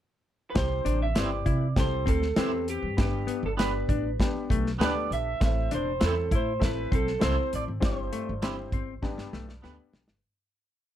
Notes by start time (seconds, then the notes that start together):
0.50 B4
0.54 C2 C3 C4 E4 G4 C5, kick, snare, closed hi-hat
0.85 A1 D4, closed hi-hat
1.02 E5
1.15 G1 C4 E4 G4 B4 C5 D5, snare, closed hi-hat
1.46 C3 E4, kick, closed hi-hat
1.76 C2 C4 E4 G4 A4 C5, kick, snare, closed hi-hat
2.06 D2 C4 A4, kick, closed hi-hat
2.22 snare
2.36 E2 C4 E4 G4 B4 C5, snare, closed hi-hat
2.68 G4, closed hi-hat
2.83 G2
2.97 G1 G2 B3 D4 G4 B4, kick, snare, closed hi-hat
3.01 G4
3.27 B3, closed hi-hat
3.43 G1 A4
3.57 B3 D4 G4 B4, snare, closed hi-hat
3.89 A1 D4, kick, closed hi-hat
4.19 B3 D4 G4 B4, kick, snare, closed hi-hat
4.34 muted upright bass stroke
4.50 B1 A3, kick, closed hi-hat
4.66 snare
4.79 D2 A3 B3 D4 G4 A4 B4, snare, closed hi-hat
4.84 B3 D5
5.11 A#1 E5, closed hi-hat
5.40 A1 A2 C4 E4 A4 C5, kick, snare, closed hi-hat
5.45 E5
5.71 E1 D4 C5, closed hi-hat
6.00 E2 C4 E4 A4 C5, snare, closed hi-hat
6.06 A4
6.31 A2 E4, kick, closed hi-hat
6.35 C5
6.60 A1 C4 E4 A4 E5, kick, snare, closed hi-hat
6.65 B4
6.92 B1 C4 A4, kick, closed hi-hat
7.07 snare
7.19 C2 C4 E4 A4 C5, snare, closed hi-hat
7.25 C5
7.53 A1 D5, closed hi-hat
7.68 G#1
7.80 G1 G2 C4 E4 G4 C5, kick, snare, closed hi-hat
7.85 C5
8.13 A3, closed hi-hat
8.29 G1
8.42 C4 D4 E4 G4 C5, snare, closed hi-hat
8.48 E4
8.72 G1 C4, kick, closed hi-hat
9.02 G1 G2 B3 D4 G4 B4, kick, snare
9.18 muted upright bass stroke, snare
9.33 B1 A3, snare
9.49 snare
9.62 D2 B3 D4 G4 A4 B4, snare
9.71 B4
9.93 B1, snare
10.08 G1, snare